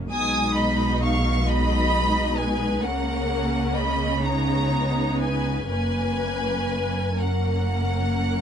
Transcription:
0.11 double bass section B1, cello section B2, viola section G#3 D#4, violin section G#5 D#6
0.56 violin section D#5 B5
1.01 violin section F5 C#6
1.46 viola section G#3 D#4, violin section D#5 B5
2.37 violin section B4 G#5
2.82 double bass section C#2, cello section C#3, viola section A#3 C#4, violin section A#4 F#5
3.75 violin section D#5 B5
4.22 viola section B3 D#4, violin section C#5 A#5
5.19 violin section B4 G#5
5.67 double bass section F#1, cello section F#2, viola section A#3 C#4, violin section B4 G#5
7.20 viola section A#3 C#4, violin section A#4 F#5

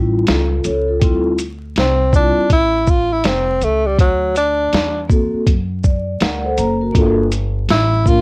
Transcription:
Already playing: upright bass A1, vibraphone G3 C#4 E4 F4
0.27 upright bass C#2, vibraphone F4 A4, snare, closed hi-hat
0.64 upright bass C#2, vibraphone A4 C#5, closed hi-hat, shaker
0.88 vibraphone F4 A4
1.00 upright bass D2, vibraphone G3 C4 E4, kick, closed hi-hat
1.04 vibraphone F4
1.39 closed hi-hat, shaker
1.76 upright bass C2, tenor saxophone C4, snare, closed hi-hat
2.11 vibraphone G3 C4 E4 F4, kick, shaker
2.15 tenor saxophone D4
2.50 upright bass A1, tenor saxophone E4, kick, closed hi-hat
2.87 tenor saxophone F4, kick, shaker
3.12 tenor saxophone E4
3.24 upright bass F1, tenor saxophone C4, snare, closed hi-hat
3.61 upright bass C#2, tenor saxophone A3, closed hi-hat, shaker
3.87 tenor saxophone G3
3.99 upright bass D2, tenor saxophone F#3, kick, closed hi-hat
4.36 tenor saxophone D4, closed hi-hat, shaker
4.73 upright bass E2, snare, closed hi-hat
5.08 vibraphone A#3 C4 F#4 A4, kick, shaker
5.33 muted upright bass stroke
5.47 upright bass F#2, kick, closed hi-hat
5.83 vibraphone D5, kick, shaker
6.20 upright bass D2, vibraphone A#4 D5 F#5, snare, closed hi-hat
6.44 vibraphone A4 C5
6.58 upright bass F#1, vibraphone A#5, closed hi-hat, shaker
6.81 vibraphone F#4 A#4
6.92 upright bass G1, vibraphone A#3 D4 F4, kick, closed hi-hat
6.96 vibraphone A4
7.32 closed hi-hat, shaker
7.69 upright bass A1, tenor saxophone E4, snare, closed hi-hat
8.04 vibraphone A#3 D4 F4 A#4, tenor saxophone F4, kick, shaker

